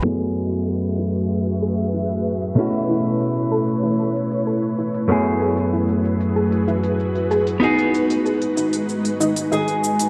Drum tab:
HH |---o-o-o-o-o-o-o|-o-o-o-o-o-o-o-o|-o-o-o-o-o-o-o-o|-o-o-o-o-o-o-o-o|
SH |--x---x---xxx-xx|--xxx-xxx-xxx-xx|x-xxx-xxx-xxx-xx|x-xxx-xxx-xxx-xx|